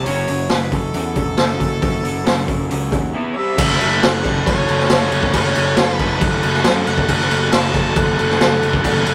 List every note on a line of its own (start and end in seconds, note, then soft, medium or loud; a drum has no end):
0.05 0.25 F#1 loud
0.05 0.27 F#3 medium
0.05 0.27 C#4 medium
0.05 0.28 F#4 loud
0.05 0.51 C#5 loud
0.05 open hi-hat medium
0.28 0.48 F#1 medium
0.28 0.48 F#3 medium
0.28 0.48 C#4 medium
0.28 open hi-hat medium
0.49 0.89 F#1 medium
0.49 0.70 F#3 medium
0.49 0.70 C#4 medium
0.49 0.77 B4 medium
0.49 snare loud
0.49 open hi-hat medium
0.72 0.92 F#3 medium
0.72 0.92 C#4 medium
0.72 kick medium
0.72 open hi-hat medium
0.76 3.16 A4 loud
0.94 1.13 E2 medium
0.94 1.14 F#3 medium
0.94 1.14 C#4 medium
0.94 open hi-hat medium
1.15 1.36 E1 medium
1.15 1.36 F#3 medium
1.15 1.36 C#4 medium
1.15 kick medium
1.15 open hi-hat medium
1.37 1.57 F#1 medium
1.37 1.58 F#3 medium
1.37 1.58 C#4 medium
1.37 snare loud
1.37 open hi-hat medium
1.59 1.80 F#1 medium
1.59 1.80 F#3 medium
1.59 1.80 C#4 medium
1.59 kick medium
1.59 open hi-hat medium
1.82 2.02 F#1 loud
1.82 2.02 F#3 medium
1.82 2.02 C#4 medium
1.82 kick loud
1.82 open hi-hat medium
2.03 2.24 F#1 medium
2.03 2.23 F#3 medium
2.03 2.24 C#4 medium
2.03 open hi-hat medium
2.24 2.46 F#1 medium
2.24 2.45 F#3 medium
2.24 2.46 C#4 medium
2.24 snare loud
2.24 open hi-hat medium
2.47 2.68 F#1 medium
2.47 2.68 F#3 medium
2.47 2.68 C#4 medium
2.47 kick medium
2.47 open hi-hat medium
2.69 2.90 C#2 medium
2.69 2.90 F#3 medium
2.69 2.90 C#4 medium
2.69 open hi-hat medium
2.91 3.12 D#2 medium
2.91 3.12 F#3 medium
2.91 3.12 C#4 medium
2.91 kick medium
2.91 open hi-hat medium
3.13 3.35 E3 medium
3.13 3.35 B3 medium
3.13 3.35 E4 loud
3.31 3.56 C3 medium
3.31 3.38 C#5 medium
3.36 3.57 G3 loud
3.36 3.57 C4 loud
3.36 4.04 E5 loud
3.56 3.76 F#1 loud
3.56 4.01 F#2 loud
3.56 4.01 C#3 loud
3.56 3.82 F#3 medium
3.56 3.81 A3 medium
3.56 3.80 C#4 loud
3.56 kick loud
3.56 crash loud
3.60 3.78 A4 loud
3.69 snare soft
3.79 3.99 F#1 medium
3.79 4.04 A3 medium
3.79 4.04 C#4 medium
3.79 4.05 A4 medium
3.79 crash medium
3.83 4.03 F#3 medium
4.01 4.21 F#1 loud
4.01 5.33 F#2 loud
4.01 4.46 C#3 medium
4.01 4.28 F#3 medium
4.01 4.26 A3 medium
4.01 4.25 C#4 loud
4.01 4.46 F#5 loud
4.01 snare loud
4.01 crash medium
4.06 4.23 A4 loud
4.23 4.43 F#1 medium
4.23 4.69 A3 medium
4.23 4.68 C#4 medium
4.23 4.67 A4 medium
4.23 kick medium
4.23 crash medium
4.28 4.71 F#3 medium
4.46 4.65 F#1 loud
4.46 5.31 C#5 medium
4.46 kick loud
4.46 crash medium
4.67 4.87 F#1 medium
4.67 4.91 A3 medium
4.67 4.92 C#4 medium
4.67 4.93 A4 medium
4.67 crash medium
4.71 4.90 F#3 medium
4.79 snare soft
4.89 5.09 F#1 loud
4.89 5.34 F#3 medium
4.89 5.35 A3 medium
4.89 5.36 C#4 medium
4.89 snare loud
4.89 crash medium
4.94 5.37 A4 medium
5.11 5.30 F#1 medium
5.11 crash medium
5.23 kick loud
5.33 5.52 F#1 loud
5.33 5.76 F#2 medium
5.33 5.76 C#3 loud
5.33 5.58 F#3 loud
5.33 5.57 A3 loud
5.33 5.56 C#4 loud
5.33 5.54 A4 loud
5.33 5.94 C#5 medium
5.33 kick loud
5.33 crash medium
5.55 5.74 F#1 medium
5.55 5.78 F#3 medium
5.55 5.79 A3 medium
5.55 5.79 C#4 medium
5.55 5.81 A4 medium
5.55 crash medium
5.76 5.96 F#1 medium
5.76 7.07 F#2 medium
5.76 6.21 C#3 loud
5.76 6.02 F#3 loud
5.76 6.01 A3 medium
5.76 6.00 C#4 loud
5.76 snare loud
5.76 crash medium
5.81 5.98 A4 loud
5.94 6.23 B4 medium
5.99 6.18 F#1 medium
5.99 6.46 F#3 medium
5.99 6.45 A3 medium
5.99 6.44 C#4 medium
5.99 6.42 A4 medium
5.99 kick medium
5.99 crash medium
6.21 6.40 F#1 loud
6.21 6.66 F#5 loud
6.21 kick loud
6.21 crash medium
6.42 6.62 F#1 medium
6.42 6.64 A3 medium
6.42 6.66 C#4 medium
6.42 6.67 A4 medium
6.42 crash medium
6.46 6.63 F#3 medium
6.54 snare soft
6.63 6.83 F#2 loud
6.63 7.09 F#3 medium
6.63 7.09 A3 medium
6.63 7.10 C#4 medium
6.63 snare loud
6.63 crash medium
6.68 7.11 A4 medium
6.87 7.05 F#1 medium
6.87 7.55 F#5 loud
6.87 crash medium
6.98 kick loud
7.07 7.27 F#1 loud
7.07 7.50 F#2 loud
7.07 7.50 C#3 loud
7.07 7.32 F#3 loud
7.07 7.31 A3 loud
7.07 7.30 C#4 loud
7.07 kick loud
7.07 crash medium
7.11 7.28 A4 loud
7.19 snare soft
7.29 7.49 F#1 medium
7.29 7.53 A3 medium
7.29 7.54 C#4 medium
7.29 7.55 A4 medium
7.29 crash medium
7.33 7.52 F#3 medium
7.51 7.71 F#1 medium
7.51 8.83 F#2 medium
7.51 7.96 C#3 loud
7.51 7.77 F#3 loud
7.51 7.76 A3 loud
7.51 7.75 C#4 loud
7.51 8.00 A5 loud
7.51 snare loud
7.51 crash medium
7.55 7.73 A4 loud
7.73 7.93 F#1 medium
7.73 8.19 A3 medium
7.73 8.17 C#4 medium
7.73 8.16 A4 medium
7.73 kick medium
7.73 crash medium
7.77 8.20 F#3 medium
7.96 8.15 F#1 loud
7.96 8.85 F#5 loud
7.96 kick loud
7.96 crash medium
8.17 8.37 F#1 medium
8.17 8.39 A3 medium
8.17 8.41 C#4 medium
8.17 8.42 A4 medium
8.17 crash medium
8.21 8.38 F#3 medium
8.29 snare soft
8.39 8.59 F#1 medium
8.39 8.84 F#3 medium
8.39 8.84 A3 medium
8.39 8.85 C#4 medium
8.39 snare loud
8.39 crash medium
8.43 8.86 A4 medium
8.63 8.81 F#1 medium
8.63 crash medium
8.73 kick loud
8.83 9.03 F#1 loud
8.83 9.14 F#2 medium
8.83 9.14 C#3 medium
8.83 9.08 F#3 medium
8.83 9.06 A3 loud
8.83 9.05 C#4 loud
8.83 9.14 F#5 loud
8.83 kick loud
8.83 crash medium
8.87 9.04 A4 loud
9.05 9.14 F#1 medium
9.05 9.14 F#3 medium
9.05 9.14 A3 medium
9.05 9.14 C#4 medium
9.05 9.14 A4 medium
9.05 crash medium